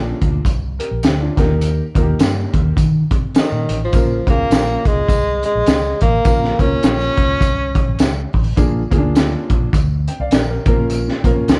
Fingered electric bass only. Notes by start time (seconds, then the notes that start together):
Already playing: A#1
0.22 D2
0.45 C2
0.91 A#1
1.03 D2
1.38 D#2
1.95 D#2
2.20 G2
2.54 D#2
2.77 D#3
3.11 C3
3.52 A#2
3.69 A1
3.93 A#1
4.27 C#2
4.50 A#1
4.85 C#2
5.09 C2
5.55 A#1
5.67 C#2
6.02 A1
6.25 A#1
6.59 C#2
6.83 A#1
7.18 C#2
7.41 C2
7.88 A#1
8.00 C#2
8.34 A1
8.58 A#1
8.92 D2
9.50 A#1
9.73 D2
10.20 C2
10.32 A#1
10.66 A#1
11.24 A#1
11.48 C#2